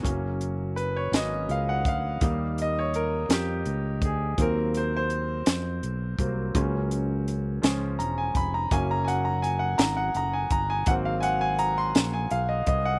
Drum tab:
HH |xxxxxx|xxxxxx|xxxxxx|xxxxxx|
SD |---o--|---o--|---o--|---o--|
BD |o----o|o----o|o----o|o----o|

HH |xxxxxx|xxxxxx|
SD |---o--|---o--|
BD |o----o|o----o|